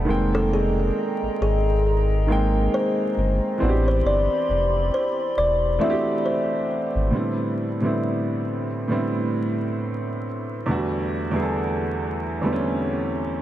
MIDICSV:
0, 0, Header, 1, 5, 480
1, 0, Start_track
1, 0, Tempo, 882353
1, 35, Time_signature, 4, 2, 24, 8
1, 7300, End_track
2, 0, Start_track
2, 0, Title_t, "Ambient pad"
2, 0, Program_c, 0, 92
2, 27, Note_on_c, 0, 75, 70
2, 29, Note_on_c, 0, 79, 76
2, 32, Note_on_c, 0, 68, 82
2, 32, Note_on_c, 0, 82, 89
2, 1932, Note_off_c, 0, 75, 0
2, 1933, Note_off_c, 0, 79, 0
2, 1935, Note_off_c, 0, 68, 0
2, 1935, Note_off_c, 0, 82, 0
2, 1953, Note_on_c, 0, 67, 80
2, 1953, Note_on_c, 0, 84, 93
2, 1954, Note_on_c, 0, 83, 75
2, 1955, Note_on_c, 0, 74, 70
2, 3855, Note_off_c, 0, 67, 0
2, 3855, Note_off_c, 0, 84, 0
2, 3856, Note_off_c, 0, 74, 0
2, 3856, Note_off_c, 0, 83, 0
2, 7300, End_track
3, 0, Start_track
3, 0, Title_t, "Kalimba"
3, 0, Program_c, 1, 108
3, 189, Note_on_c, 1, 69, 89
3, 274, Note_off_c, 1, 69, 0
3, 291, Note_on_c, 1, 68, 78
3, 742, Note_off_c, 1, 68, 0
3, 772, Note_on_c, 1, 68, 84
3, 1462, Note_off_c, 1, 68, 0
3, 1492, Note_on_c, 1, 72, 81
3, 1702, Note_off_c, 1, 72, 0
3, 2111, Note_on_c, 1, 72, 69
3, 2194, Note_off_c, 1, 72, 0
3, 2212, Note_on_c, 1, 74, 80
3, 2684, Note_off_c, 1, 74, 0
3, 2687, Note_on_c, 1, 72, 79
3, 2900, Note_off_c, 1, 72, 0
3, 2926, Note_on_c, 1, 74, 88
3, 3139, Note_off_c, 1, 74, 0
3, 3163, Note_on_c, 1, 76, 80
3, 3378, Note_off_c, 1, 76, 0
3, 3403, Note_on_c, 1, 72, 72
3, 3618, Note_off_c, 1, 72, 0
3, 7300, End_track
4, 0, Start_track
4, 0, Title_t, "Upright piano"
4, 0, Program_c, 2, 0
4, 0, Control_c, 2, 64, 127
4, 27, Note_on_c, 2, 51, 72
4, 35, Note_on_c, 2, 56, 60
4, 41, Control_c, 2, 64, 0
4, 44, Note_on_c, 2, 58, 75
4, 48, Note_on_c, 2, 60, 66
4, 56, Note_on_c, 2, 79, 77
4, 152, Control_c, 2, 64, 127
4, 764, Note_off_c, 2, 51, 0
4, 768, Note_off_c, 2, 56, 0
4, 773, Note_off_c, 2, 58, 0
4, 775, Note_off_c, 2, 60, 0
4, 779, Note_off_c, 2, 79, 0
4, 1234, Note_on_c, 2, 51, 72
4, 1241, Note_on_c, 2, 56, 72
4, 1248, Note_on_c, 2, 58, 72
4, 1254, Note_on_c, 2, 60, 61
4, 1262, Note_on_c, 2, 79, 84
4, 1794, Note_off_c, 2, 51, 0
4, 1797, Note_off_c, 2, 56, 0
4, 1801, Note_off_c, 2, 58, 0
4, 1804, Note_off_c, 2, 60, 0
4, 1808, Note_off_c, 2, 79, 0
4, 1945, Note_on_c, 2, 52, 74
4, 1953, Note_on_c, 2, 59, 64
4, 1959, Note_on_c, 2, 60, 71
4, 1962, Control_c, 2, 64, 0
4, 1968, Note_on_c, 2, 62, 70
4, 1975, Note_on_c, 2, 66, 61
4, 2006, Note_off_c, 2, 66, 0
4, 2007, Note_on_c, 2, 67, 82
4, 2066, Control_c, 2, 64, 127
4, 2683, Note_off_c, 2, 52, 0
4, 2687, Note_off_c, 2, 59, 0
4, 2690, Note_off_c, 2, 60, 0
4, 2695, Note_off_c, 2, 62, 0
4, 2714, Note_off_c, 2, 67, 0
4, 3149, Note_on_c, 2, 52, 79
4, 3153, Note_on_c, 2, 57, 71
4, 3160, Note_on_c, 2, 60, 61
4, 3167, Note_on_c, 2, 62, 71
4, 3176, Note_on_c, 2, 66, 63
4, 3207, Note_off_c, 2, 66, 0
4, 3210, Note_on_c, 2, 67, 86
4, 3711, Note_off_c, 2, 52, 0
4, 3713, Note_off_c, 2, 57, 0
4, 3717, Note_off_c, 2, 60, 0
4, 3720, Note_off_c, 2, 62, 0
4, 3742, Note_off_c, 2, 67, 0
4, 3867, Note_on_c, 2, 45, 62
4, 3873, Note_on_c, 2, 50, 56
4, 3877, Note_on_c, 2, 55, 57
4, 3882, Control_c, 2, 64, 0
4, 3885, Note_on_c, 2, 59, 51
4, 3888, Note_on_c, 2, 60, 57
4, 3895, Note_on_c, 2, 64, 77
4, 3968, Control_c, 2, 64, 127
4, 4151, Note_off_c, 2, 45, 0
4, 4154, Note_off_c, 2, 50, 0
4, 4156, Note_off_c, 2, 55, 0
4, 4160, Note_off_c, 2, 59, 0
4, 4161, Note_off_c, 2, 60, 0
4, 4165, Note_off_c, 2, 64, 0
4, 4248, Note_on_c, 2, 45, 62
4, 4253, Note_on_c, 2, 50, 64
4, 4258, Note_on_c, 2, 55, 59
4, 4263, Note_on_c, 2, 59, 59
4, 4271, Note_on_c, 2, 60, 60
4, 4275, Note_on_c, 2, 64, 76
4, 4704, Note_off_c, 2, 45, 0
4, 4707, Note_off_c, 2, 50, 0
4, 4709, Note_off_c, 2, 55, 0
4, 4712, Note_off_c, 2, 59, 0
4, 4716, Note_off_c, 2, 60, 0
4, 4718, Note_off_c, 2, 64, 0
4, 4830, Note_on_c, 2, 45, 68
4, 4834, Note_on_c, 2, 50, 49
4, 4839, Note_on_c, 2, 55, 64
4, 4846, Note_on_c, 2, 59, 66
4, 4851, Note_on_c, 2, 60, 71
4, 4857, Note_on_c, 2, 64, 79
4, 5566, Note_off_c, 2, 45, 0
4, 5568, Note_off_c, 2, 50, 0
4, 5570, Note_off_c, 2, 55, 0
4, 5574, Note_off_c, 2, 59, 0
4, 5576, Note_off_c, 2, 60, 0
4, 5579, Note_off_c, 2, 64, 0
4, 5799, Note_on_c, 2, 40, 71
4, 5801, Control_c, 2, 64, 0
4, 5806, Note_on_c, 2, 50, 59
4, 5810, Note_on_c, 2, 55, 54
4, 5814, Note_on_c, 2, 57, 59
4, 5820, Note_on_c, 2, 59, 61
4, 5828, Note_on_c, 2, 66, 81
4, 5886, Control_c, 2, 64, 127
4, 6077, Note_off_c, 2, 40, 0
4, 6080, Note_off_c, 2, 50, 0
4, 6082, Note_off_c, 2, 55, 0
4, 6085, Note_off_c, 2, 57, 0
4, 6087, Note_off_c, 2, 59, 0
4, 6091, Note_off_c, 2, 66, 0
4, 6155, Note_on_c, 2, 40, 71
4, 6158, Note_on_c, 2, 50, 55
4, 6165, Note_on_c, 2, 55, 60
4, 6167, Note_on_c, 2, 57, 59
4, 6174, Note_on_c, 2, 59, 60
4, 6180, Note_on_c, 2, 68, 62
4, 6207, Note_off_c, 2, 68, 0
4, 6215, Note_on_c, 2, 69, 71
4, 6618, Note_off_c, 2, 40, 0
4, 6620, Note_off_c, 2, 50, 0
4, 6623, Note_off_c, 2, 55, 0
4, 6624, Note_off_c, 2, 57, 0
4, 6627, Note_off_c, 2, 59, 0
4, 6648, Note_off_c, 2, 69, 0
4, 6753, Note_on_c, 2, 40, 64
4, 6757, Note_on_c, 2, 50, 60
4, 6760, Note_on_c, 2, 55, 68
4, 6767, Note_on_c, 2, 57, 63
4, 6775, Note_on_c, 2, 59, 64
4, 6778, Note_on_c, 2, 60, 59
4, 6807, Note_off_c, 2, 60, 0
4, 6814, Note_on_c, 2, 61, 78
4, 7300, Note_off_c, 2, 40, 0
4, 7300, Note_off_c, 2, 50, 0
4, 7300, Note_off_c, 2, 55, 0
4, 7300, Note_off_c, 2, 57, 0
4, 7300, Note_off_c, 2, 59, 0
4, 7300, Note_off_c, 2, 61, 0
4, 7300, End_track
5, 0, Start_track
5, 0, Title_t, "Sub bass"
5, 0, Program_c, 3, 38
5, 43, Note_on_c, 3, 29, 108
5, 497, Note_off_c, 3, 29, 0
5, 665, Note_on_c, 3, 32, 52
5, 703, Note_off_c, 3, 32, 0
5, 767, Note_on_c, 3, 32, 89
5, 1459, Note_off_c, 3, 32, 0
5, 1725, Note_on_c, 3, 31, 95
5, 1852, Note_off_c, 3, 31, 0
5, 1967, Note_on_c, 3, 33, 102
5, 2189, Note_off_c, 3, 33, 0
5, 2201, Note_on_c, 3, 31, 94
5, 2330, Note_off_c, 3, 31, 0
5, 2443, Note_on_c, 3, 29, 88
5, 2667, Note_off_c, 3, 29, 0
5, 2923, Note_on_c, 3, 28, 85
5, 3147, Note_off_c, 3, 28, 0
5, 3781, Note_on_c, 3, 32, 85
5, 3874, Note_off_c, 3, 32, 0
5, 7300, End_track
0, 0, End_of_file